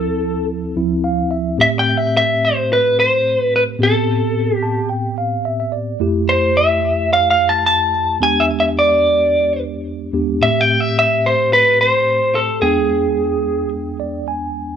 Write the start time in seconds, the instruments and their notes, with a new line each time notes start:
Already playing: tine electric piano D2 F3 C4 E4, lead electric guitar A4
0.76 tine electric piano D2 F3 C4 E4
1.04 tine electric piano F5
1.31 tine electric piano E5
1.58 tine electric piano A2 A3 C4 G4, lead electric guitar E5
1.79 lead electric guitar G5
1.97 lead electric guitar E5
2.17 lead electric guitar E5
2.45 lead electric guitar C5
2.73 lead electric guitar B4
3.00 lead electric guitar C5
3.40 lead electric guitar B4
3.56 lead electric guitar B4
3.79 tine electric piano A2 B3 C4 G4
3.83 lead electric guitar A4
4.55 lead electric guitar G4
4.63 tine electric piano A5
4.89 tine electric piano G5
5.18 tine electric piano F5
5.45 tine electric piano E5
5.60 tine electric piano E5
5.72 tine electric piano D5
6.00 tine electric piano F2 A3 E4 G4
6.29 lead electric guitar C5
6.57 lead electric guitar E5
7.13 lead electric guitar F5
7.30 lead electric guitar F5
7.49 lead electric guitar A5
7.66 lead electric guitar A5
8.20 tine electric piano E2 G#3 B3 D4 G4, lead electric guitar G#5
8.40 lead electric guitar E5
8.60 lead electric guitar E5
8.79 lead electric guitar D5
10.13 tine electric piano E2 G#3 B3 D4 G4
10.41 tine electric piano A2 A3 C4 G4, lead electric guitar E5
10.61 lead electric guitar G5
10.80 lead electric guitar E5
10.99 lead electric guitar E5
11.26 lead electric guitar C5
11.53 lead electric guitar B4
11.81 lead electric guitar C5
12.35 lead electric guitar A4
12.61 tine electric piano E2 G#3 B3 D4 G5, lead electric guitar G#4
14.00 tine electric piano D5
14.28 tine electric piano G#5